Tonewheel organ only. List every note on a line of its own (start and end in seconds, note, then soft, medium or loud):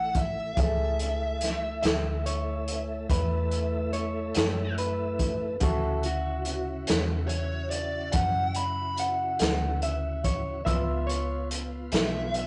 0.00 0.53 A3 medium
0.00 0.53 E4 medium
0.54 5.56 A3 medium
0.54 5.56 E4 medium
5.60 10.61 C#3 medium
5.60 10.61 E4 medium
5.60 10.61 F#4 medium
10.65 12.47 B3 medium
10.65 12.47 F4 medium